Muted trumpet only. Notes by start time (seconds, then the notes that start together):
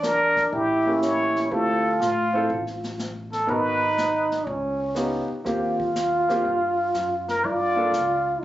0.03 A#4
0.53 G4
1.02 C#5
1.52 A4
2.01 F4
3.33 A4
3.50 B4
7.30 A#4
7.45 D5